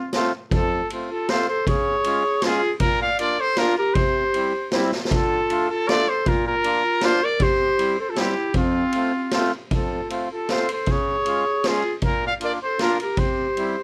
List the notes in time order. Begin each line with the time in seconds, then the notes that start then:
Already playing: C4 F4
0.13 A3 C4 F4, snare, closed hi-hat
0.51 F2 F4 A4, kick, ride
0.90 A3 C4 F4, ride
1.10 F4 A4
1.29 A3 C4 F4 A4 C5, snare, ride
1.49 A4 C5
1.67 C#3 G#4 C#5, kick, ride
2.04 G#3 C#4 F4, ride
2.42 G#3 C#4 F4 G#4, snare, ride
2.80 A#2 F4 A#4, kick, ride
3.02 D5 F5
3.19 A#3 D4 F4 A#4 D5, ride
3.40 A4 C5
3.57 A#3 D4 F4 A#4, snare, ride
3.77 G4 A#4
3.94 C3 G4 C5, kick, ride
4.34 G3 C4 E4, ride
4.72 G3 C4 E4, snare, ride
4.92 snare
5.05 snare
5.11 D3 F4 A4, kick, ride
5.50 A3 D4 F4, ride
5.70 F4 A4
5.88 A3 D4 F4 A4 D5, snare, ride
6.09 A4 C5
6.26 A#2 F4 A#4, kick, ride
6.46 F4 A#4
6.64 A#3 D4 F4, ride
7.01 A#3 D4 F4 C5, snare, ride
7.23 A#4 D5
7.40 C3 G4 C5, kick, ride
7.78 G3 C4 E4, ride
7.99 A4 C5
8.09 F4 A4
8.15 G3 C4 E4 G4, snare, ride
8.54 F2 C4 F4, kick, ride
8.93 A3 C4 F4, ride
9.31 A3 C4 F4, snare, ride
9.71 F2 F4 A4, kick, ride
10.09 A3 C4 F4, ride
10.32 F4 A4
10.49 A3 C4 F4 A4 C5, snare, ride
10.69 A4, ride
10.73 C5
10.86 C#3 G#4, kick, ride
10.91 C#5
11.26 G#3 C#4 F4, ride
11.64 G#3 C#4 F4 G#4, snare, ride
12.02 A#2 F4 A#4, kick, ride
12.26 D5 F5
12.40 A#3 D4 F4 A#4, ride
12.44 D5
12.63 A4 C5
12.79 A#3 D4 F4 A#4, snare, ride
12.83 F4
13.00 G4 A#4, ride
13.17 C3 G4 C5, kick, ride
13.57 G3 C4 E4, ride